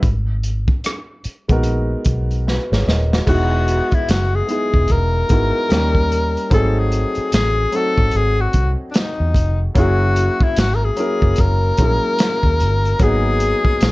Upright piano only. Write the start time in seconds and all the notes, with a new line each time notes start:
1.48 G#3 B3 D#4 F#4 A#4
2.47 F#4 B4
2.72 G#4 C#5
2.88 A#4 D#5
3.12 F#4 B4
3.26 G#3 B3 D#4 E4
3.30 F#4
4.47 G#3 B3 D#4 E4
4.51 G#4
5.29 G#3 B3 D#4 E4
5.33 F#4
5.69 G3 A#3 C#4 D#4
5.73 G4
6.50 F#3 A3 C4 D#4
6.54 G#4
7.72 F#3 A3 C4 D#4
7.76 F#4
9.74 F#3 A#3 C#4 E4
9.79 G#4
10.96 F#3 A#3 C#4 E4
11.00 A#4
11.78 F#3 G#3 C#4 E4
11.82 A#3 G#4
12.99 F#3 A#3 B3 D#4
13.03 G#4